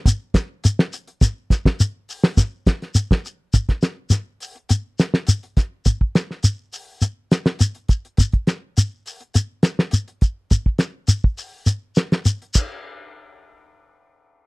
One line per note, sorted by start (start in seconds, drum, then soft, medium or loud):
0.06 kick medium
0.06 closed hi-hat medium
0.06 shekere medium
0.34 kick medium
0.34 snare medium
0.34 closed hi-hat medium
0.34 shekere soft
0.64 closed hi-hat medium
0.64 shekere medium
0.79 snare medium
0.93 closed hi-hat medium
0.93 shekere soft
1.08 closed hi-hat soft
1.21 kick medium
1.21 snare soft
1.21 closed hi-hat medium
1.21 shekere medium
1.50 kick medium
1.50 snare soft
1.50 closed hi-hat medium
1.50 shekere soft
1.65 kick medium
1.65 snare medium
1.65 closed hi-hat soft
1.80 closed hi-hat medium
1.80 shekere loud
2.09 open hi-hat medium
2.09 shekere soft
2.24 snare medium
2.37 kick medium
2.37 snare soft
2.37 closed hi-hat medium
2.37 shekere medium
2.67 kick medium
2.67 snare medium
2.67 closed hi-hat medium
2.67 shekere soft
2.82 snare soft
2.82 closed hi-hat soft
2.95 closed hi-hat medium
2.95 shekere medium
3.11 kick medium
3.11 snare medium
3.11 closed hi-hat soft
3.25 closed hi-hat medium
3.25 shekere soft
3.54 kick medium
3.54 closed hi-hat medium
3.54 shekere medium
3.69 kick medium
3.69 snare soft
3.69 closed hi-hat soft
3.82 snare medium
3.82 closed hi-hat medium
3.82 shekere soft
4.10 snare soft
4.10 closed hi-hat medium
4.10 shekere medium
4.40 open hi-hat medium
4.40 shekere soft
4.56 closed hi-hat soft
4.69 closed hi-hat medium
4.69 shekere medium
4.99 snare medium
4.99 closed hi-hat medium
4.99 shekere soft
5.14 snare medium
5.27 closed hi-hat medium
5.27 shekere medium
5.43 closed hi-hat soft
5.57 kick medium
5.57 snare soft
5.57 closed hi-hat medium
5.57 shekere soft
5.85 kick medium
5.85 closed hi-hat medium
5.85 shekere medium
6.01 kick medium
6.15 snare medium
6.15 closed hi-hat soft
6.15 shekere soft
6.31 snare soft
6.43 closed hi-hat medium
6.43 shekere medium
6.73 open hi-hat medium
6.73 shekere soft
7.02 closed hi-hat medium
7.02 shekere medium
7.31 snare medium
7.31 closed hi-hat soft
7.31 shekere soft
7.45 snare medium
7.45 closed hi-hat soft
7.59 closed hi-hat medium
7.59 shekere medium
7.75 closed hi-hat soft
7.88 kick medium
7.88 closed hi-hat medium
7.88 shekere soft
8.05 closed hi-hat soft
8.17 kick medium
8.17 closed hi-hat medium
8.17 shekere medium
8.32 kick medium
8.32 closed hi-hat soft
8.47 snare medium
8.47 closed hi-hat medium
8.47 shekere soft
8.77 closed hi-hat medium
8.77 shekere loud
9.06 open hi-hat medium
9.06 shekere soft
9.21 closed hi-hat soft
9.34 closed hi-hat medium
9.34 shekere medium
9.63 snare medium
9.63 closed hi-hat medium
9.63 shekere soft
9.79 snare medium
9.91 closed hi-hat medium
9.91 shekere medium
10.08 closed hi-hat soft
10.21 kick medium
10.21 closed hi-hat medium
10.21 shekere soft
10.50 kick medium
10.50 closed hi-hat medium
10.50 shekere medium
10.66 kick medium
10.78 snare medium
10.78 closed hi-hat medium
10.78 shekere soft
11.07 closed hi-hat medium
11.07 shekere medium
11.24 kick medium
11.37 open hi-hat medium
11.37 shekere soft
11.66 closed hi-hat medium
11.66 shekere medium
11.96 snare medium
11.96 closed hi-hat medium
11.96 shekere soft
12.12 snare medium
12.12 closed hi-hat soft
12.25 closed hi-hat medium
12.25 shekere medium
12.42 closed hi-hat soft
12.54 kick medium
12.54 crash medium
12.54 shekere loud